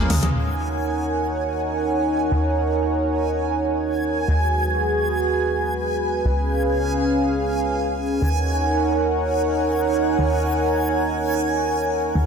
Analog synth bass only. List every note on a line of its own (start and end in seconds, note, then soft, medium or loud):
0.10 0.19 D#2 medium
0.23 0.31 D#2 medium
0.35 2.29 D#2 medium
2.31 4.26 D#2 medium
4.28 6.22 D#2 medium
6.25 8.19 C#2 medium
8.22 10.16 D#2 medium
10.18 12.13 D#2 medium
12.15 12.26 D#2 medium